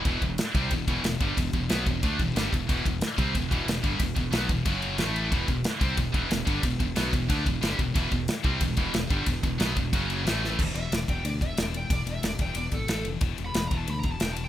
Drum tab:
CC |--------|--------|--------|--------|
RD |xxxxxxxx|xxxxxxxx|xxxxxxxx|xxxxxxxx|
SD |--o---o-|--o---o-|--o---o-|--o---o-|
BD |oo-ooo-o|oo-ooo-o|oo-ooo-o|oo-oo---|

CC |--------|--------|--------|--------|
RD |xxxxxxxx|xxxxxxxx|xxxxxxxx|xxxxxxx-|
SD |--o---o-|--o---o-|--o---o-|--o---oo|
BD |oo-ooo-o|oo-ooo-o|oo-ooo-o|oo-oo---|

CC |x-------|--------|--------|
RD |-xxxxxxx|xxxxxxxx|xxxxxxxx|
SD |--o---o-|--o---o-|--o---o-|
BD |o--o-o--|o--o-o--|o--o-o--|